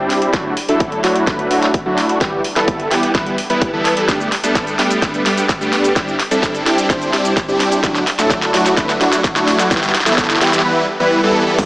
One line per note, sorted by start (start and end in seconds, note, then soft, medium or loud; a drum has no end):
0.00 0.31 G3 medium
0.00 0.31 C4 medium
0.00 0.31 D4 medium
0.00 0.31 E4 medium
0.00 0.31 G4 medium
0.10 snare medium
0.10 open hi-hat loud
0.22 closed hi-hat medium
0.33 0.53 F#3 medium
0.33 0.53 A3 medium
0.33 0.53 D4 medium
0.33 0.53 E4 medium
0.33 0.53 F#4 medium
0.33 kick loud
0.33 snare medium
0.33 closed hi-hat medium
0.57 open hi-hat loud
0.69 1.01 F#3 medium
0.69 1.01 A3 medium
0.69 1.01 D4 medium
0.69 1.01 E4 medium
0.69 1.01 A4 medium
0.69 closed hi-hat soft
0.80 kick loud
0.80 closed hi-hat medium
0.92 closed hi-hat soft
1.04 1.24 F#3 loud
1.04 1.24 A3 medium
1.04 1.24 D4 medium
1.04 1.24 E4 medium
1.04 1.24 F#4 loud
1.04 snare medium
1.04 open hi-hat loud
1.15 closed hi-hat soft
1.27 1.48 F#3 medium
1.27 1.48 A3 medium
1.27 1.48 D4 medium
1.27 1.48 E4 medium
1.27 1.48 B4 medium
1.27 kick loud
1.27 snare medium
1.27 closed hi-hat medium
1.39 closed hi-hat soft
1.51 1.70 F#3 medium
1.51 1.70 A3 medium
1.51 1.70 D4 medium
1.51 1.70 E4 medium
1.51 1.70 F#4 loud
1.51 open hi-hat loud
1.62 snare medium
1.62 closed hi-hat soft
1.74 kick loud
1.74 closed hi-hat medium
1.86 2.18 F#3 medium
1.86 2.18 A3 medium
1.86 2.18 D4 medium
1.86 2.18 E4 medium
1.86 2.18 F#4 medium
1.98 snare medium
1.98 open hi-hat loud
2.09 closed hi-hat soft
2.21 2.41 E3 medium
2.21 2.41 G3 medium
2.21 2.41 B3 medium
2.21 2.41 E4 medium
2.21 2.41 G4 medium
2.21 kick loud
2.21 snare medium
2.21 closed hi-hat medium
2.44 open hi-hat loud
2.56 2.88 E3 medium
2.56 2.88 G3 medium
2.56 2.88 B3 medium
2.56 2.88 E4 medium
2.56 2.88 A4 medium
2.56 snare medium
2.56 closed hi-hat soft
2.68 kick loud
2.68 closed hi-hat medium
2.80 closed hi-hat soft
2.91 3.12 E3 medium
2.91 3.12 G3 medium
2.91 3.12 B3 medium
2.91 3.12 E4 medium
2.91 3.12 G4 loud
2.91 snare medium
2.91 open hi-hat loud
3.03 closed hi-hat soft
3.15 3.35 E3 medium
3.15 3.35 G3 medium
3.15 3.35 B3 medium
3.15 3.35 E4 medium
3.15 3.35 B4 medium
3.15 kick loud
3.15 snare medium
3.15 closed hi-hat medium
3.26 closed hi-hat soft
3.38 open hi-hat loud
3.50 3.70 E3 medium
3.50 3.70 G3 medium
3.50 3.70 B3 medium
3.50 3.70 E4 medium
3.50 3.70 B4 loud
3.50 closed hi-hat soft
3.62 kick loud
3.62 closed hi-hat medium
3.73 3.94 E3 medium
3.73 3.94 G3 medium
3.73 3.94 B3 medium
3.73 3.94 E4 medium
3.73 3.94 A4 loud
3.85 snare medium
3.85 open hi-hat loud
3.97 4.07 E3 medium
3.97 4.07 G3 medium
3.97 4.07 B3 medium
3.97 4.07 E4 medium
3.97 4.07 A4 medium
3.97 closed hi-hat soft
4.08 4.28 G3 medium
4.08 4.28 A3 medium
4.08 4.28 B3 medium
4.08 4.28 D4 medium
4.08 4.28 G4 medium
4.08 kick loud
4.08 snare medium
4.08 closed hi-hat medium
4.08 cabasa medium
4.21 cabasa soft
4.32 snare medium
4.32 open hi-hat loud
4.43 4.76 G3 medium
4.43 4.76 A3 medium
4.43 4.76 B3 medium
4.43 4.76 D4 medium
4.43 4.76 A4 medium
4.43 closed hi-hat soft
4.43 cabasa medium
4.55 kick loud
4.55 snare medium
4.55 closed hi-hat medium
4.55 cabasa medium
4.67 closed hi-hat soft
4.67 cabasa soft
4.79 4.99 G3 medium
4.79 4.99 A3 medium
4.79 4.99 B3 medium
4.79 4.99 D4 medium
4.79 4.99 G4 loud
4.79 snare medium
4.79 open hi-hat loud
4.91 closed hi-hat soft
4.91 cabasa medium
5.02 5.23 G3 medium
5.02 5.23 A3 medium
5.02 5.23 B3 medium
5.02 5.23 D4 medium
5.02 5.23 B4 medium
5.02 kick loud
5.02 snare medium
5.02 closed hi-hat medium
5.02 cabasa medium
5.14 closed hi-hat soft
5.14 cabasa soft
5.26 5.45 G3 medium
5.26 5.45 A3 medium
5.26 5.45 B3 medium
5.26 5.45 D4 medium
5.26 5.45 G4 loud
5.26 snare medium
5.26 open hi-hat loud
5.37 closed hi-hat soft
5.37 cabasa medium
5.49 kick loud
5.49 snare medium
5.49 closed hi-hat medium
5.49 cabasa medium
5.61 5.93 G3 medium
5.61 5.93 A3 medium
5.61 5.93 B3 medium
5.61 5.93 D4 medium
5.61 5.93 G4 medium
5.61 cabasa soft
5.73 snare medium
5.73 open hi-hat loud
5.84 closed hi-hat medium
5.84 cabasa medium
5.96 6.16 G3 medium
5.96 6.16 C4 medium
5.96 6.16 D4 medium
5.96 6.16 E4 medium
5.96 6.16 G4 medium
5.96 kick loud
5.96 snare medium
5.96 closed hi-hat medium
5.96 cabasa medium
6.08 cabasa soft
6.19 snare medium
6.19 open hi-hat loud
6.31 6.63 G3 medium
6.31 6.63 C4 medium
6.31 6.63 D4 medium
6.31 6.63 E4 medium
6.31 6.63 A4 medium
6.31 closed hi-hat medium
6.31 cabasa medium
6.43 kick loud
6.43 snare medium
6.43 closed hi-hat medium
6.43 cabasa medium
6.55 closed hi-hat soft
6.55 cabasa soft
6.66 6.87 G3 medium
6.66 6.87 C4 medium
6.66 6.87 D4 medium
6.66 6.87 E4 medium
6.66 6.87 G4 loud
6.66 snare medium
6.66 open hi-hat loud
6.78 closed hi-hat soft
6.78 cabasa medium
6.90 7.10 G3 medium
6.90 7.10 C4 medium
6.90 7.10 D4 medium
6.90 7.10 E4 medium
6.90 7.10 C5 medium
6.90 kick loud
6.90 snare medium
6.90 closed hi-hat medium
6.90 cabasa medium
7.02 closed hi-hat soft
7.02 cabasa soft
7.13 7.33 G3 medium
7.13 7.33 C4 medium
7.13 7.33 D4 medium
7.13 7.33 E4 medium
7.13 7.33 G4 loud
7.13 snare medium
7.13 open hi-hat loud
7.25 closed hi-hat medium
7.25 cabasa medium
7.37 kick loud
7.37 snare medium
7.37 closed hi-hat medium
7.37 cabasa medium
7.48 7.81 G3 medium
7.48 7.81 C4 medium
7.48 7.81 D4 medium
7.48 7.81 E4 medium
7.48 7.81 G4 loud
7.48 cabasa soft
7.60 snare medium
7.60 open hi-hat loud
7.72 closed hi-hat medium
7.72 cabasa medium
7.83 8.03 F#3 medium
7.83 8.03 A3 medium
7.83 8.03 D4 medium
7.83 8.03 E4 medium
7.83 8.03 F#4 loud
7.83 kick loud
7.83 snare medium
7.83 closed hi-hat medium
7.83 cabasa medium
7.95 snare medium
7.95 cabasa soft
8.07 snare loud
8.07 open hi-hat loud
8.19 8.51 F#3 medium
8.19 8.51 A3 medium
8.19 8.51 D4 medium
8.19 8.51 E4 medium
8.19 8.51 A4 medium
8.19 snare medium
8.19 closed hi-hat medium
8.19 cabasa medium
8.30 kick loud
8.30 snare medium
8.30 closed hi-hat medium
8.30 cabasa medium
8.42 snare medium
8.42 closed hi-hat soft
8.42 cabasa soft
8.54 8.74 F#3 medium
8.54 8.74 A3 medium
8.54 8.74 D4 medium
8.54 8.74 E4 medium
8.54 8.74 F#4 loud
8.54 snare medium
8.54 open hi-hat loud
8.66 snare medium
8.66 closed hi-hat medium
8.66 cabasa medium
8.77 8.98 F#3 medium
8.77 8.98 A3 medium
8.77 8.98 D4 medium
8.77 8.98 E4 medium
8.77 8.98 B4 medium
8.77 kick loud
8.77 snare medium
8.77 closed hi-hat medium
8.77 cabasa medium
8.89 snare medium
8.89 closed hi-hat soft
8.89 cabasa soft
9.01 9.20 F#3 loud
9.01 9.20 A3 medium
9.01 9.20 D4 medium
9.01 9.20 E4 medium
9.01 9.20 F#4 loud
9.01 snare loud
9.01 open hi-hat loud
9.12 snare medium
9.12 closed hi-hat medium
9.12 cabasa medium
9.24 kick loud
9.24 snare loud
9.24 closed hi-hat medium
9.24 cabasa medium
9.36 9.68 F#3 medium
9.36 9.68 A3 medium
9.36 9.68 D4 medium
9.36 9.68 E4 medium
9.36 9.68 F#4 loud
9.36 snare medium
9.36 cabasa soft
9.48 snare loud
9.48 open hi-hat loud
9.59 snare medium
9.59 closed hi-hat medium
9.59 cabasa medium
9.71 9.91 E3 medium
9.71 9.91 G3 medium
9.71 9.91 B3 medium
9.71 9.91 E4 medium
9.71 9.91 G4 loud
9.71 kick loud
9.71 snare loud
9.71 closed hi-hat medium
9.71 cabasa medium
9.77 snare medium
9.83 snare medium
9.83 closed hi-hat soft
9.83 cabasa soft
9.89 snare medium
9.94 snare loud
9.94 open hi-hat loud
10.00 snare medium
10.06 10.38 E3 medium
10.06 10.38 G3 medium
10.06 10.38 B3 medium
10.06 10.38 E4 medium
10.06 10.38 A4 medium
10.06 snare medium
10.06 closed hi-hat medium
10.06 cabasa medium
10.12 snare medium
10.18 kick loud
10.18 snare loud
10.18 open hi-hat medium
10.18 cabasa medium
10.24 snare medium
10.30 snare medium
10.30 closed hi-hat soft
10.30 cabasa soft
10.35 snare medium
10.41 10.62 E3 medium
10.41 10.62 G3 medium
10.41 10.62 B3 medium
10.41 10.62 E4 medium
10.41 10.62 G4 loud
10.41 snare loud
10.41 open hi-hat loud
10.47 snare medium
10.53 snare medium
10.53 closed hi-hat medium
10.53 cabasa medium
10.59 snare loud
10.65 10.85 E3 medium
10.65 10.85 G3 medium
10.65 10.85 B3 medium
10.65 10.85 E4 medium
10.65 10.85 B4 medium
11.00 11.21 E3 medium
11.00 11.21 G3 medium
11.00 11.21 B3 medium
11.00 11.21 E4 medium
11.00 11.21 B4 loud
11.23 11.44 E3 loud
11.23 11.44 G3 medium
11.23 11.44 B3 medium
11.23 11.44 E4 medium
11.23 11.44 A4 loud
11.47 11.57 E3 medium
11.47 11.57 G3 medium
11.47 11.57 B3 medium
11.47 11.57 E4 medium
11.47 11.57 A4 medium
11.58 11.66 G1 medium
11.58 11.66 G3 medium
11.58 11.66 A3 medium
11.58 11.66 B3 medium
11.58 11.66 D4 medium
11.58 11.66 G4 loud
11.58 kick loud
11.58 closed hi-hat medium
11.58 crash loud
11.58 cabasa medium